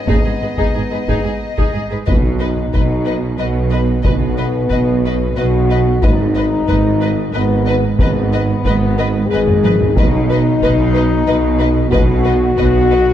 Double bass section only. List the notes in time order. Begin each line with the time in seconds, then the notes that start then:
0.07 G#1
0.41 G#1
0.75 G#1
1.08 G#1
1.75 G#1
2.06 B1
2.74 B1
3.39 B1
4.05 B1
4.70 B1
5.37 B1
6.03 G#1
6.69 G#1
7.33 G#1
7.99 G#1
8.65 G#1
9.33 G#1
9.98 B1
10.62 B1
11.27 B1
11.92 B1
12.57 B1